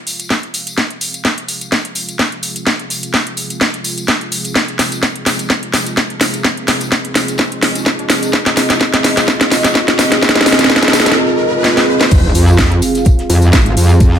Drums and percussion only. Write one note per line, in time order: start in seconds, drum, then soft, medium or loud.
0.07 open hi-hat loud
0.07 tambourine medium
0.19 closed hi-hat medium
0.19 tambourine soft
0.30 kick loud
0.30 snare medium
0.30 tambourine soft
0.43 closed hi-hat soft
0.54 open hi-hat loud
0.54 tambourine loud
0.67 closed hi-hat medium
0.67 tambourine medium
0.78 kick loud
0.78 snare medium
0.78 tambourine soft
0.90 closed hi-hat soft
1.01 open hi-hat loud
1.01 tambourine medium
1.14 closed hi-hat medium
1.14 tambourine medium
1.25 kick loud
1.25 snare medium
1.25 tambourine soft
1.38 closed hi-hat medium
1.48 open hi-hat loud
1.48 tambourine medium
1.61 closed hi-hat medium
1.61 tambourine medium
1.72 kick loud
1.72 snare medium
1.72 tambourine soft
1.85 closed hi-hat medium
1.95 open hi-hat loud
1.95 tambourine medium
2.09 closed hi-hat medium
2.09 tambourine medium
2.19 kick loud
2.19 snare medium
2.19 tambourine soft
2.32 closed hi-hat soft
2.43 open hi-hat loud
2.43 tambourine medium
2.56 closed hi-hat medium
2.56 tambourine medium
2.67 kick loud
2.67 snare medium
2.67 tambourine soft
2.79 closed hi-hat soft
2.90 open hi-hat loud
2.90 tambourine medium
3.03 closed hi-hat medium
3.03 tambourine medium
3.14 kick loud
3.14 snare medium
3.14 tambourine soft
3.27 closed hi-hat soft
3.37 open hi-hat loud
3.37 tambourine medium
3.50 closed hi-hat medium
3.50 tambourine soft
3.61 kick loud
3.61 snare medium
3.61 tambourine soft
3.74 closed hi-hat soft
3.84 open hi-hat loud
3.84 tambourine loud
3.98 closed hi-hat medium
3.98 tambourine medium
4.08 kick loud
4.08 snare medium
4.08 tambourine soft
4.21 closed hi-hat soft
4.32 open hi-hat loud
4.32 tambourine loud
4.44 closed hi-hat medium
4.44 tambourine medium
4.56 kick loud
4.56 snare medium
4.56 tambourine soft
4.68 closed hi-hat soft
4.79 snare medium
4.79 open hi-hat loud
4.79 tambourine medium
4.92 closed hi-hat medium
4.92 tambourine medium
5.03 kick loud
5.03 snare medium
5.03 tambourine soft
5.16 closed hi-hat soft
5.26 snare medium
5.26 open hi-hat loud
5.26 tambourine medium
5.39 closed hi-hat medium
5.39 tambourine soft
5.50 kick loud
5.50 snare medium
5.50 tambourine soft
5.63 closed hi-hat medium
5.74 snare medium
5.74 open hi-hat loud
5.74 tambourine medium
5.86 closed hi-hat medium
5.86 tambourine soft
5.97 kick loud
5.97 snare medium
5.97 tambourine soft
6.10 closed hi-hat soft
6.21 snare medium
6.21 open hi-hat loud
6.21 tambourine loud
6.34 closed hi-hat medium
6.34 tambourine soft
6.45 kick loud
6.45 snare medium
6.45 tambourine soft
6.57 closed hi-hat soft
6.68 snare medium
6.68 open hi-hat loud
6.68 tambourine medium
6.81 closed hi-hat medium
6.81 tambourine medium
6.92 kick loud
6.92 snare medium
6.92 tambourine soft
7.05 closed hi-hat soft
7.15 snare medium
7.15 open hi-hat loud
7.15 tambourine medium
7.28 closed hi-hat medium
7.28 tambourine medium
7.38 kick loud
7.38 snare medium
7.38 tambourine soft
7.52 closed hi-hat medium
7.63 snare medium
7.63 open hi-hat loud
7.63 tambourine medium
7.75 closed hi-hat medium
7.75 tambourine medium
7.86 kick loud
7.86 snare medium
7.86 tambourine soft
7.99 closed hi-hat soft
8.10 snare loud
8.10 open hi-hat loud
8.10 tambourine medium
8.23 closed hi-hat medium
8.23 tambourine medium
8.33 kick loud
8.33 snare medium
8.33 tambourine soft
8.46 snare medium
8.46 closed hi-hat soft
8.57 snare medium
8.57 open hi-hat loud
8.57 tambourine loud
8.70 snare medium
8.70 closed hi-hat medium
8.70 tambourine medium
8.80 kick loud
8.80 snare loud
8.80 tambourine soft
8.94 snare medium
8.94 closed hi-hat medium
9.04 snare medium
9.04 open hi-hat loud
9.04 tambourine medium
9.17 snare medium
9.17 closed hi-hat medium
9.17 tambourine soft
9.28 kick loud
9.28 snare medium
9.28 tambourine soft
9.41 snare medium
9.41 closed hi-hat medium
9.52 snare medium
9.52 open hi-hat loud
9.52 tambourine medium
9.64 snare medium
9.64 closed hi-hat medium
9.64 tambourine medium
9.75 kick loud
9.75 snare loud
9.88 snare medium
9.88 closed hi-hat soft
9.99 snare loud
9.99 open hi-hat loud
9.99 tambourine medium
10.12 snare medium
10.12 closed hi-hat medium
10.12 tambourine soft
10.22 kick loud
10.22 snare loud
10.22 tambourine soft
10.29 snare medium
10.36 snare medium
10.36 closed hi-hat soft
10.41 snare medium
10.46 snare loud
10.46 open hi-hat loud
10.46 tambourine medium
10.53 snare loud
10.59 snare medium
10.59 closed hi-hat medium
10.59 tambourine medium
10.64 snare medium
10.70 kick loud
10.70 snare loud
10.70 tambourine soft
10.76 snare medium
10.83 snare medium
10.83 closed hi-hat medium
10.88 snare medium
10.93 snare loud
10.93 open hi-hat loud
10.93 tambourine medium
11.00 snare medium
11.06 snare medium
11.06 closed hi-hat medium
11.06 tambourine soft
11.12 snare medium
11.64 snare medium
11.77 snare medium
12.01 snare medium
12.11 kick loud
12.11 closed hi-hat medium
12.11 crash loud
12.11 tambourine soft
12.35 closed hi-hat medium
12.35 open hi-hat loud
12.35 tambourine medium
12.48 tambourine soft
12.58 kick loud
12.58 snare loud
12.58 closed hi-hat medium
12.58 tambourine soft
12.72 closed hi-hat soft
12.82 closed hi-hat medium
12.82 open hi-hat loud
12.82 tambourine loud
12.95 snare soft
12.95 closed hi-hat medium
12.95 tambourine medium
13.05 kick loud
13.05 closed hi-hat medium
13.05 tambourine soft
13.18 snare soft
13.18 closed hi-hat soft
13.30 closed hi-hat medium
13.30 open hi-hat loud
13.30 tambourine medium
13.42 closed hi-hat soft
13.42 tambourine medium
13.53 kick loud
13.53 snare loud
13.53 closed hi-hat medium
13.53 tambourine soft
13.66 closed hi-hat medium
13.77 closed hi-hat medium
13.77 open hi-hat loud
13.77 tambourine medium
13.89 tambourine medium
14.00 kick loud
14.00 closed hi-hat medium
14.00 tambourine soft
14.14 snare soft